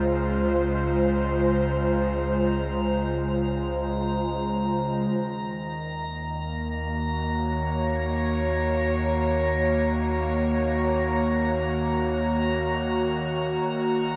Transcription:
Already playing: C#2 C#3 G#3 F4 C5 A#5
5.12 D#2 D#3
5.98 A#3
6.76 F#4
7.20 C#5
13.65 G#1

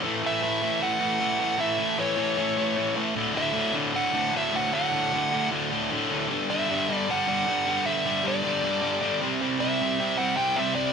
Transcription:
0.03 A2 E3 A3
0.23 A2 E3 A3 E5
0.42 A2 E3 A3
0.62 A2 E3 A3
0.81 A2 E3 A3 F#5
1.00 A2 E3 A3
1.20 A2 E3 A3
1.40 A2 E3 A3
1.58 A2 E3 A3 E5
1.78 A2 E3 A3
1.98 A2 E3 A3 C#5
2.17 A2 E3 A3
2.37 A2 E3 A3
2.57 A2 E3 A3
2.77 A2 E3 A3
2.96 A2 E3 A3
3.16 D2 A2 D3
3.34 D2 A2 D3 E5
3.54 D2 A2 D3
3.74 D2 A2 D3
3.93 D2 A2 D3 F#5
4.13 D2 A2 D3
4.33 D2 A2 D3
4.37 E5
4.53 D2 A2 D3 F#5
4.73 D2 A2 D3 F#5
4.92 D2 A2 D3
5.13 D2 A2 D3
5.32 D2 A2 D3
5.51 D2 A2 D3
5.71 D2 A2 D3
5.91 D2 A2 D3
6.10 D2 A2 D3
6.28 G2 D3 G3
6.50 G2 D3 G3 E5
6.69 G2 D3 G3
6.89 G2 D3 G3
6.96 D5
7.09 G2 D3 G3 F#5
7.28 G2 D3 G3
7.47 G2 D3 G3
7.66 G2 D3 G3
7.86 G2 D3 G3 E5
8.06 G2 D3 G3
8.24 G2 D3 G3 D5
8.44 G2 D3 G3
8.64 G2 D3 G3
8.82 G2 D3 G3
9.02 G2 D3 G3
9.21 C3 G3 C4
9.42 C3 G3 C4
9.59 C3 G3 C4 E5
9.82 C3 G3 C4
10.00 C3 G3 C4
10.18 C3 G3 C4 F#5
10.37 C3 G3 C4 G5
10.56 C3 G3 C4 E5
10.75 C3 G3 C4 D5

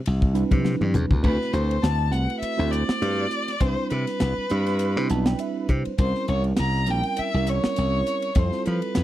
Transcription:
0.06 C2, ride
0.22 kick
0.34 G3 C4 D4 E4 B4, hi-hat pedal, ride
0.51 C3, kick, ride, high conga
0.65 snare, high conga
0.81 G2, mid tom, high conga
0.94 E2, hi-hat pedal, mid tom, low conga
1.11 D2, kick, low conga
1.23 D2 A3 C4 E4 F#4 B4, kick, crash
1.41 snare
1.53 D2 C5, hi-hat pedal, ride
1.71 ride
1.82 D2 A5, snare, hi-hat pedal, ride
2.11 C2 A3 C4 E4 F#4 B4 F#5, hi-hat pedal, ride
2.30 ride
2.40 E5, muted slap bass stroke, hi-hat pedal, ride
2.57 D2 A3 C4 E4 F#4 C5, snare
2.71 D5, hi-hat pedal, ride
2.89 muted slap bass stroke, snare
3.02 G2, hi-hat pedal, ride
3.31 hi-hat pedal, ride
3.48 snare, ride
3.60 C2 G3 C4 D4 E4 B4 C5, kick, hi-hat pedal, ride
3.90 C3 B4, hi-hat pedal, ride
4.07 snare, ride
4.20 C2, snare, hi-hat pedal, ride
4.38 muted slap bass stroke
4.50 G2 G3 C4 D4 E4 B4, hi-hat pedal, ride
4.67 snare, ride
4.79 hi-hat pedal, ride
4.96 C3 G3 C4 D4 E4 B4, snare
5.09 B1 A5, hi-hat pedal, ride
5.26 G5, snare, ride
5.39 E5, hi-hat pedal, ride
5.69 C3 C5, kick, hi-hat pedal, ride
5.85 muted slap bass stroke, ride
5.98 C2 G3 C4 C#4 E4 A#4 C5, kick, hi-hat pedal, ride
6.15 snare
6.28 C2 C#5, hi-hat pedal, ride
6.44 ride
6.57 C2 A#5, snare, hi-hat pedal, ride
6.86 A#1 G3 C4 C#4 E4 A#4, hi-hat pedal, ride
6.90 G5
7.03 ride
7.17 E5, muted slap bass stroke, hi-hat pedal, ride
7.34 C2 G3 C4 C#4 E4 A#4
7.47 C#5, hi-hat pedal, ride
7.64 muted slap bass stroke, snare
7.76 C2, hi-hat pedal, ride
8.06 hi-hat pedal, ride
8.22 ride
8.35 F2 G3 C4 E4 F4 A4 C5, kick, hi-hat pedal, ride
8.52 snare
8.66 F3 B4, hi-hat pedal, ride
8.82 ride
8.95 F2, snare, hi-hat pedal, ride

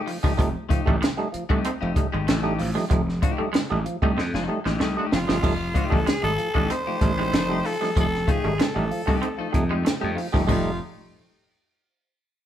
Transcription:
Already playing: A3 D#4 G4
0.07 F3, muted clean electric guitar stroke, open hi-hat
0.23 F3 G3 A3 D#4 G4, kick, snare
0.37 F1 F3 G3 A3 D#4, kick, closed hi-hat
0.69 F3 A3 D#4 G4, muted clean electric guitar stroke, kick, closed hi-hat
0.86 A1 G3 A3 D#4, kick
1.02 G#3, snare, closed hi-hat
1.18 G3 A3 D#4, muted clean electric guitar stroke
1.32 F3, muted slap bass stroke, closed hi-hat
1.49 C2 G3 A3 D#4 G4, kick
1.64 A3 C4 D#4, closed hi-hat
1.81 F1 F3 A3 D#4 G4
1.96 G3 A3 D#4, muted clean electric guitar stroke, kick, closed hi-hat
2.12 G#1 G#3 A3 D#4 G4
2.27 A1 A3 D#4 A4, snare, closed hi-hat
2.43 G3 A3 D#4 G4
2.59 A1 F3, muted clean electric guitar stroke, open hi-hat
2.75 F3 G3 A3 D#4, snare
2.90 F1 F3 G3 A3 D#4, kick, closed hi-hat
3.09 snare
3.22 F3 A3 D#4 G4, muted clean electric guitar stroke, kick, closed hi-hat
3.38 G3 A3 D#4, muted slap bass stroke
3.53 G#3, snare, closed hi-hat
3.70 A1 G3 A3 D#4, muted clean electric guitar stroke
3.85 F3, closed hi-hat
4.02 C2 G3 A3 D#4 G4, kick
4.17 F2 A3 C4 D#4, snare
4.34 F1 F3 A3 D#4 A4, snare
4.48 G3 A3 D#4, muted clean electric guitar stroke
4.65 A1 G#3 A3 D#4 G4, snare
4.80 C2 A3 D#4 G4, snare
4.97 G3 A3 D#4 G4
5.12 F1 F3 F4, muted clean electric guitar stroke, snare
5.27 G1 F3 G3 A3 D#4, snare
5.42 F1 F3 G3 A3 D#4, kick, crash
5.74 F3 A3 D#4 G4, muted clean electric guitar stroke, kick, closed hi-hat
5.89 A1 G3 A3 D#4, kick
5.94 A4
6.07 G#3 G#4, snare, closed hi-hat
6.22 G#1 G3 A3 D#4 A4, muted clean electric guitar stroke
6.38 F3, closed hi-hat
6.54 A1 G3 A3 D#4 G4, kick
6.70 A3 C4 D#4 C5, closed hi-hat
6.87 F3 A3 D#4 G4
7.01 A1 G3 A3 D#4, muted clean electric guitar stroke, kick, closed hi-hat
7.18 G#3 A3 D#4 G4
7.33 F1 A3 D#4 A4, snare, closed hi-hat
7.49 G3 A3 D#4 G4
7.65 F3 A4, muted clean electric guitar stroke, open hi-hat
7.80 F3 G3 A3 D#4, snare
7.96 F1 F3 G3 A3 D#4, kick, closed hi-hat
8.00 A4
8.15 snare
8.28 F3 A3 D#4 G4 G#4, muted clean electric guitar stroke, kick, closed hi-hat
8.44 G#1 G3 A3 D#4
8.60 G#3 A4, snare, closed hi-hat
8.75 A1 G3 A3 D#4, muted clean electric guitar stroke
8.91 F3, open hi-hat
9.06 C2 G3 A3 D#4 G4, kick
9.22 A3 C4 D#4, closed hi-hat
9.38 F3 A3 D#4 A4
9.52 F2 G3 A3 D#4, muted clean electric guitar stroke, kick, closed hi-hat
9.70 G#3 A3 D#4 G4
9.85 A3, snare, closed hi-hat
10.01 F2 G3 A3 D#4 G4
10.16 F3, muted clean electric guitar stroke, open hi-hat
10.32 G1 F3 G3 A3 D#4 G4, kick, snare
10.47 F1 F3 G3 A3 D#4 G4, kick, floor tom, splash
10.51 F4

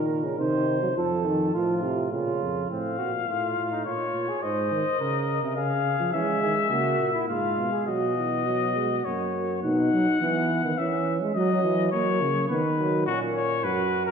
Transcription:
Already playing: A#2 D#3 A#4
0.24 C#3
0.39 C3 D#3 C5
0.82 F#3
0.96 F2 F3 A4
1.25 D#3
1.54 A2 F3 F4
1.82 C3
2.11 A#2 C#3 F4
2.42 F2
2.69 A2 C4 F5
2.98 A#2 F#4
3.28 A2 F4
3.57 A2
3.71 D#4
3.85 A#2 F4 C#5
4.15 A#2
4.28 G#4
4.43 G#2 C5 D#5
4.71 D#3
5.00 C#3 A#4
5.43 C3
5.56 C#3 G#4 F5
5.99 F3
6.13 E3 G#3 C#4 E5
6.42 D#3 G#4
6.70 C#3 A#3 F#4
6.99 A#2
7.13 E4
7.28 G#2 G#3 F4 F5
7.57 B2
7.72 G#4
7.86 B2 F#3 F#4 D#5
8.17 E3
8.46 F#3
8.75 G#3
9.04 F#2 A#3 F#4 C#5
9.63 B2 D#4 F#5
9.93 F#3
10.21 E3 B3
10.64 D#3
10.78 E3 C#4 E5
11.22 G#3
11.34 F#3 D#5
11.64 E3
11.92 F#3 A#3 C#5
12.21 C#3
12.48 D#3 B3 B4
12.78 F#3
13.06 A#2 C#4 F#4
13.36 C#5
13.64 F#2 F#4 B4
14.06 A#4

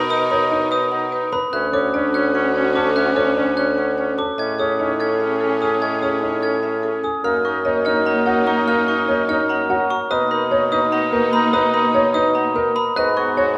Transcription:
Already playing: B2 D#4 A#4 B4 A#5 B5
0.10 D#4 D#5 D#6
0.30 D#4 A#4 C#5 B5
0.51 D#4 C#5
0.71 D#4 B4 D#6
0.92 D#4 F#5
1.12 D#4 B4
1.32 B4 A#5 B5
1.52 D2 C#4 F#4 E5 F#6
1.73 C#4 A4 C#5 D6
1.94 C#4 D4 D5
2.14 C#4 C#5 F#6
2.35 C#4 F#5
2.55 C#4 C#5
2.75 C#4 A4 A5 D6
2.96 C#4 E5 F#6
3.16 C#4 A4 C#5 D6
3.37 C#4 D4 D5
3.57 C#4 C#5 F#6
3.77 C#4 F#5
3.98 C#4 C#5
4.18 A4 A5 D6
4.38 A2 C#4 G#4 D#5 G#6
4.59 C#4 G#4 C#5 D#6
4.79 C#4 D#4 C#5
5.00 C#4 A4 G#6
5.20 C#4 E5
5.41 C#4 A4
5.61 C#4 A4 G#5 D#6
5.82 C#4 D#5 G#6
6.02 C#4 G#4 C#5 D#6
6.22 C#4 D#4 C#5
6.42 C#4 A4 G#6
6.63 C#4 E5
6.83 C#4 A4
7.04 A4 G#5 D#6
7.24 F#2 A#3 D#4 A#4 F5 F6
7.45 D#4 A#4 C#6
7.65 D#4 C#5 D#5
7.85 D#4 C#5 F6
8.05 D#4 F#5 A#5
8.26 D#4 F#4 C#5
8.47 D#4 A#5 C#6
8.67 D#4 A#4 F5 F6
8.87 D#4 A#4 C#6
9.08 D#4 C#5 D#5
9.29 D#4 C#5 F6
9.49 D#4 F#5 A#5
9.70 D#4 F#4 C#5
9.90 A#5 C#6
10.10 B2 A#3 D#4 B4 D#5 D#6
10.31 D#4 A#4 B5
10.51 D#4 C#5
10.72 D#4 B4 D#6
10.92 D#4 F#5 A#5
11.12 D#4 A#4 B4
11.33 D#4 A#5 B5
11.53 D#4 B4 D#5 D#6
11.74 D#4 A#4 B5
11.94 D#4 C#5
12.14 D#4 B4 D#6
12.35 D#4 F#5 A#5
12.55 D#4 A#4 B4
12.76 A#5 B5
12.96 G#2 B3 F#4 B4 D#5 F#6
13.17 F#4 G#4 C#6
13.37 F#4 C#5

